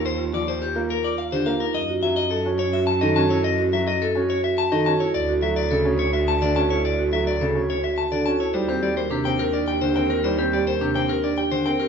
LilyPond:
<<
  \new Staff \with { instrumentName = "Clean electric guitar" } { \time 3/4 \key ees \major \tempo 4 = 106 c''16 r16 d''16 c''16 g'16 r16 bes'16 d''16 f''16 c''16 f''16 bes'16 | ees''16 r16 e''16 ees''16 a'16 r16 cis''16 e''16 a''16 ees''16 a''16 cis''16 | ees''16 r16 e''16 ees''16 a'16 r16 cis''16 e''16 a''16 ees''16 a''16 cis''16 | d''16 r16 e''16 d''16 a'16 r16 cis''16 e''16 a''16 d''16 a''16 cis''16 |
d''16 r16 e''16 d''16 a'16 r16 cis''16 e''16 a''16 d''16 a''16 cis''16 | c''16 g'16 d''16 c''16 g'16 g''16 bes'16 d''16 g''16 c''16 g''16 bes'16 | c''16 g'16 d''16 c''16 g'16 g''16 bes'16 d''16 g''16 c''16 g''16 bes'16 | }
  \new Staff \with { instrumentName = "French horn" } { \time 3/4 \key ees \major r2. | r2. | r2. | r2. |
r2. | g'2.~ | g'2~ g'8. r16 | }
  \new Staff \with { instrumentName = "Marimba" } { \time 3/4 \key ees \major r16 f'16 r8. f'16 r16 f'16 r16 g'16 f'16 ees'16 | r16 fis'16 r8. fis'16 r16 fis'16 r16 a'16 fis'16 e'16 | r16 fis'16 r8. fis'16 r16 fis'16 r16 a'16 fis'16 e'16 | r16 fis'16 r8. fis'16 r16 fis'16 r16 a'16 fis'16 e'16 |
r16 fis'16 a'16 r8 fis'16 r16 fis'16 r16 a'16 fis'16 e'16 | ees'16 r16 g'16 bes'16 d'16 r16 g'16 d'16 g'16 r16 bes'16 g'16 | ees'16 r16 g'16 bes'16 d'16 r16 g'16 d'16 g'16 r16 bes'16 g'16 | }
  \new Staff \with { instrumentName = "Grand piano" } { \clef bass \time 3/4 \key ees \major r8 f16 r8 bes16 r8. d16 bes16 r16 | r8 fis16 r8 cis'16 r8. ees16 cis'16 r16 | r8 fis16 r8 cis'16 r8. ees16 cis'16 r16 | r8 fis16 r16 cis16 cis'16 r8. d16 cis'16 r16 |
r8 fis16 r16 cis16 cis'16 r8. d16 cis'16 r16 | g16 c'16 g16 r16 c16 c'16 r8. d16 c'16 r16 | g16 c'16 g16 r16 c16 c'16 r8. d16 c'16 r16 | }
  \new Staff \with { instrumentName = "Cello" } { \clef bass \time 3/4 \key ees \major ees,2. | fis,2.~ | fis,2. | d,2.~ |
d,2. | ees,2.~ | ees,2. | }
>>